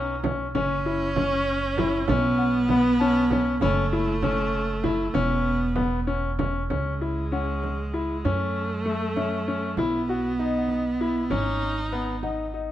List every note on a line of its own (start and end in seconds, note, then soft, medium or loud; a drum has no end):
0.00 0.51 B1 medium
0.00 0.14 C#4 medium
0.00 0.20 D#4 loud
0.24 0.45 C#4 medium
0.24 frame drum medium
0.55 2.06 F#1 medium
0.55 0.77 C#4 medium
0.55 2.12 C#4 loud
0.55 frame drum medium
0.86 1.07 E4 medium
0.86 frame drum soft
1.16 1.60 C#4 medium
1.16 frame drum medium
1.77 2.00 E4 medium
1.77 frame drum medium
2.08 3.59 B1 medium
2.08 3.62 B3 loud
2.08 2.52 C#4 medium
2.08 frame drum medium
2.38 3.81 F#5 medium
2.38 frame drum soft
2.69 2.92 B3 medium
2.69 frame drum medium
3.00 3.22 C#4 medium
3.00 3.88 A5 medium
3.31 3.53 C#4 medium
3.31 frame drum medium
3.61 5.11 F#1 medium
3.61 5.16 A3 loud
3.61 3.83 C#4 medium
3.61 5.04 B5 medium
3.61 frame drum medium
3.93 4.14 E4 medium
4.22 4.66 C#4 medium
4.22 frame drum medium
4.84 5.05 E4 medium
4.84 frame drum medium
5.14 6.67 E1 medium
5.14 6.39 B3 loud
5.14 5.58 C#4 medium
5.14 frame drum medium
5.76 5.98 B3 medium
5.76 frame drum medium
6.07 6.29 C#4 medium
6.07 frame drum soft
6.39 6.61 C#4 medium
6.39 frame drum medium
6.70 8.22 C#2 medium
6.70 8.27 G#3 medium
6.70 6.92 C#4 medium
6.70 frame drum medium
7.01 7.23 E4 medium
7.32 7.75 C#4 medium
7.32 8.51 F#5 medium
7.64 frame drum soft
7.94 8.15 E4 medium
8.25 9.75 F#2 medium
8.25 9.80 A3 loud
8.25 8.68 C#4 medium
8.25 frame drum medium
8.85 9.07 A3 medium
9.16 9.38 C#4 medium
9.16 10.04 E5 medium
9.16 frame drum soft
9.48 9.69 C#4 medium
9.77 11.27 B1 medium
9.77 11.32 B3 loud
9.77 10.00 E4 medium
9.77 frame drum medium
10.09 10.30 F#4 medium
10.39 10.82 D#4 medium
10.39 11.58 D#5 soft
10.58 11.75 F#5 soft
10.69 frame drum soft
11.01 11.22 E4 medium
11.30 12.72 G#1 medium
11.30 11.74 C#4 medium
11.30 12.54 D#4 loud
11.30 frame drum medium
11.92 12.14 B3 medium
11.92 frame drum soft
12.23 12.45 D#4 medium
12.23 12.72 F#5 medium
12.23 frame drum soft
12.53 12.72 D#4 medium
12.53 frame drum soft